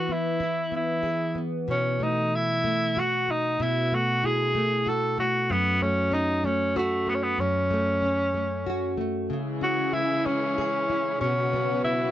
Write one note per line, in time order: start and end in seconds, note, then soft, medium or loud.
0.00 3.00 E3 medium
0.00 0.40 E4 soft
0.00 0.14 F#4 medium
0.00 1.02 G#4 medium
0.09 0.71 B3 soft
0.09 0.74 E4 medium
0.40 3.00 E4 soft
0.72 1.35 B3 soft
0.76 1.42 E4 medium
1.03 1.74 G#4 soft
1.35 2.00 B3 soft
1.68 3.58 B2 medium
1.68 2.05 C#4 medium
2.00 2.64 A3 soft
2.00 2.37 D#4 medium
2.36 3.01 E4 medium
2.64 3.28 A3 soft
2.97 4.86 F#4 medium
2.97 3.32 F#4 medium
3.28 3.92 A3 soft
3.28 3.64 D#4 medium
3.60 5.49 B2 medium
3.60 3.96 E4 medium
3.92 4.54 A3 soft
3.92 4.27 F#4 medium
4.23 6.11 E4 soft
4.23 4.90 G#4 medium
4.55 5.18 A3 medium
4.86 6.76 F#4 medium
4.86 5.19 A4 medium
5.18 5.81 A3 soft
5.18 5.53 F#4 medium
5.50 7.37 F#2 medium
5.50 5.83 B3 medium
5.81 6.43 A3 soft
5.81 6.15 C#4 medium
6.11 8.02 C#4 soft
6.11 6.47 D#4 medium
6.44 7.05 A3 soft
6.44 6.78 C#4 medium
6.76 7.11 A3 medium
6.76 8.65 F#4 medium
7.06 7.69 A3 soft
7.06 7.16 B3 medium
7.15 7.24 C#4 medium
7.23 7.41 B3 medium
7.38 9.30 F#2 medium
7.38 8.99 C#4 medium
7.70 8.33 A3 soft
8.02 9.61 C#4 soft
8.34 8.96 A3 soft
8.66 9.37 F#4 soft
8.97 9.36 A3 soft
9.30 11.21 C#3 medium
9.30 11.19 C#3 medium
9.30 11.19 E3 medium
9.30 11.19 G#3 medium
9.30 11.20 E4 medium
9.30 11.19 G#4 medium
9.61 10.26 C#4 soft
9.61 9.95 F#4 medium
9.93 10.88 E4 soft
9.93 10.27 E4 medium
10.26 11.20 C#4 medium
10.26 11.27 C#4 soft
10.58 11.27 G#4 medium
10.89 11.27 E4 soft
11.20 12.11 B2 medium
11.20 12.11 C#3 medium
11.20 12.11 F#3 medium
11.20 12.11 B3 medium
11.20 11.80 C#4 medium
11.20 12.11 F#4 medium
11.20 12.11 B4 medium
11.53 12.11 B3 soft
11.84 12.11 C#4 medium
11.84 12.11 E4 medium